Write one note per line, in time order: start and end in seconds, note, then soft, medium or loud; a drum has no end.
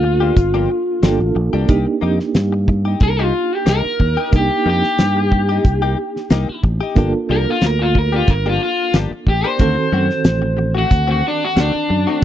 0.00 0.30 D2 medium
0.00 0.98 A#3 medium
0.00 0.99 D4 medium
0.00 0.99 F4 medium
0.00 1.34 F4 medium
0.00 1.00 A4 medium
0.00 muted clean electric guitar stroke soft
0.20 0.36 A#3 soft
0.20 0.36 D4 soft
0.20 0.36 G4 medium
0.37 0.66 G1 medium
0.37 muted clean electric guitar stroke soft
0.37 kick loud
0.37 closed hi-hat medium
0.54 0.69 F3 medium
0.54 0.69 A#3 medium
0.54 0.70 D4 medium
0.54 0.69 G4 medium
0.70 muted clean electric guitar stroke soft
1.02 1.19 G1 medium
1.02 1.20 F3 medium
1.02 1.66 A#3 medium
1.02 1.21 A#3 medium
1.02 1.67 D4 soft
1.02 1.20 D4 medium
1.02 1.69 F4 soft
1.02 1.19 G4 medium
1.02 1.69 A4 medium
1.02 snare loud
1.02 closed hi-hat medium
1.20 1.34 A1 medium
1.20 muted clean electric guitar stroke soft
1.35 1.52 A#1 medium
1.35 muted clean electric guitar stroke soft
1.53 1.67 C2 medium
1.53 1.67 A#3 medium
1.53 1.69 D4 medium
1.53 1.69 G4 medium
1.67 1.85 C2 medium
1.67 4.28 A#3 medium
1.67 1.86 A#3 medium
1.67 4.28 D4 medium
1.67 4.29 D#4 medium
1.67 1.86 D#4 medium
1.67 4.29 G4 medium
1.67 1.85 G4 medium
1.67 kick loud
1.67 closed hi-hat medium
1.87 muted clean electric guitar stroke soft
2.01 2.18 F2 medium
2.01 2.19 A#3 medium
2.01 2.19 D#4 medium
2.01 2.18 G4 medium
2.19 muted clean electric guitar stroke soft
2.19 snare soft
2.35 2.94 G2 medium
2.35 snare loud
2.35 closed hi-hat soft
2.52 muted clean electric guitar stroke medium
2.68 muted clean electric guitar stroke medium
2.68 kick medium
2.85 3.01 D#4 soft
2.85 3.01 G4 medium
3.00 3.30 C2 medium
3.00 3.22 A#4 medium
3.00 muted clean electric guitar stroke soft
3.00 kick loud
3.00 closed hi-hat medium
3.19 3.33 A#3 medium
3.19 3.33 D#4 medium
3.19 3.55 F4 medium
3.19 3.34 G4 medium
3.34 muted clean electric guitar stroke soft
3.55 3.68 G4 medium
3.66 3.83 C2 medium
3.66 3.84 A#3 medium
3.66 3.84 D#4 medium
3.66 3.83 G4 medium
3.66 4.32 A#4 loud
3.66 snare loud
3.66 closed hi-hat medium
3.85 muted clean electric guitar stroke soft
4.00 4.16 D#2 medium
4.00 muted clean electric guitar stroke soft
4.00 kick medium
4.17 4.37 D#4 soft
4.17 4.36 G4 medium
4.31 4.48 C2 medium
4.31 6.92 A#3 medium
4.31 6.92 D4 medium
4.31 6.93 D#4 medium
4.31 6.93 G4 medium
4.31 kick loud
4.31 closed hi-hat medium
4.36 4.66 G4 medium
4.51 muted clean electric guitar stroke soft
4.66 4.81 F2 medium
4.66 4.83 A#3 medium
4.66 4.83 D#4 medium
4.66 4.82 G4 medium
4.70 6.61 G4 medium
4.84 snare soft
4.98 5.58 G2 medium
4.98 snare medium
4.98 closed hi-hat medium
5.17 muted clean electric guitar stroke soft
5.31 muted clean electric guitar stroke soft
5.31 kick medium
5.49 5.64 D#4 soft
5.49 5.64 G4 medium
5.65 5.94 C2 medium
5.65 muted clean electric guitar stroke soft
5.65 kick loud
5.65 closed hi-hat medium
5.82 5.97 A#3 medium
5.82 5.97 D#4 medium
5.82 5.97 G4 medium
5.98 muted clean electric guitar stroke soft
6.16 snare soft
6.30 6.46 C2 medium
6.30 6.48 A#3 medium
6.30 6.48 D#4 medium
6.30 6.47 G4 medium
6.30 snare loud
6.30 closed hi-hat medium
6.49 muted clean electric guitar stroke medium
6.63 6.79 A1 medium
6.63 muted clean electric guitar stroke soft
6.63 kick medium
6.81 6.97 D#4 soft
6.81 6.96 G4 medium
6.95 7.12 G1 medium
6.95 7.14 F3 medium
6.95 9.55 A#3 medium
6.95 7.14 A#3 medium
6.95 9.56 D4 medium
6.95 7.14 D4 medium
6.95 9.56 F4 medium
6.95 7.13 G4 medium
6.95 9.56 A4 medium
6.95 kick loud
6.95 closed hi-hat medium
7.14 muted clean electric guitar stroke soft
7.29 7.45 C2 medium
7.29 7.47 F3 medium
7.29 7.47 A#3 medium
7.29 7.46 D4 medium
7.29 7.45 G4 medium
7.29 7.48 A#4 medium
7.47 7.63 F4 medium
7.47 muted clean electric guitar stroke soft
7.61 8.21 D2 medium
7.61 snare loud
7.61 closed hi-hat medium
7.66 7.81 A#4 medium
7.79 7.96 F4 medium
7.79 muted clean electric guitar stroke medium
7.95 8.14 A#4 medium
7.95 muted clean electric guitar stroke soft
7.95 kick medium
8.12 8.28 A#3 soft
8.12 8.28 D4 soft
8.12 8.29 F4 medium
8.12 8.28 G4 medium
8.28 8.57 G1 medium
8.28 8.46 A#4 medium
8.28 muted clean electric guitar stroke soft
8.28 kick loud
8.28 closed hi-hat medium
8.46 8.60 F3 medium
8.46 8.61 A#3 medium
8.46 8.61 D4 medium
8.46 8.62 F4 medium
8.46 8.61 G4 medium
8.61 8.94 F4 loud
8.61 muted clean electric guitar stroke soft
8.94 9.10 G1 medium
8.94 9.11 F3 medium
8.94 9.12 A#3 medium
8.94 9.12 D4 medium
8.94 9.11 G4 medium
8.94 snare loud
8.94 closed hi-hat medium
9.11 muted fingered electric bass stroke soft
9.11 muted clean electric guitar stroke soft
9.27 9.42 A1 medium
9.27 9.47 G4 loud
9.27 muted clean electric guitar stroke soft
9.27 kick medium
9.44 9.60 A#3 medium
9.44 9.60 D4 medium
9.44 9.60 G4 medium
9.44 10.73 C5 loud
9.58 9.75 D2 medium
9.58 12.18 D#3 medium
9.58 9.77 D#3 medium
9.58 9.77 A3 medium
9.58 12.18 C4 medium
9.58 9.77 C4 medium
9.58 12.19 F#4 medium
9.58 9.76 F#4 medium
9.58 12.19 A4 medium
9.58 kick loud
9.58 closed hi-hat medium
9.77 muted clean electric guitar stroke soft
9.92 10.08 F#2 medium
9.92 10.10 D#3 medium
9.92 10.09 A3 medium
9.92 10.09 C4 medium
9.92 10.08 F#4 medium
10.09 muted clean electric guitar stroke soft
10.09 snare soft
10.24 10.84 A1 medium
10.24 snare loud
10.24 closed hi-hat medium
10.42 muted clean electric guitar stroke soft
10.57 muted clean electric guitar stroke soft
10.75 10.90 A3 soft
10.75 10.90 C4 soft
10.75 10.90 F#4 medium
10.75 11.09 F#4 medium
10.90 11.21 D2 medium
10.90 muted clean electric guitar stroke soft
10.90 kick loud
10.90 closed hi-hat medium
11.07 11.22 D#3 medium
11.07 11.22 A3 medium
11.07 11.23 C4 medium
11.07 11.23 F#4 medium
11.11 11.25 F#4 medium
11.23 muted clean electric guitar stroke soft
11.28 11.43 D4 medium
11.45 11.58 F#4 medium
11.56 11.72 D2 medium
11.56 11.74 D#3 medium
11.56 11.74 A3 medium
11.56 11.74 C4 medium
11.56 12.24 D4 medium
11.56 11.73 F#4 medium
11.56 snare loud
11.56 closed hi-hat medium
11.74 muted clean electric guitar stroke soft
11.74 muted fingered electric bass stroke soft
11.89 12.06 F#2 medium
11.89 muted clean electric guitar stroke soft
12.07 12.24 A3 medium
12.07 12.24 C4 medium
12.07 12.24 F#4 medium
12.21 12.24 C4 medium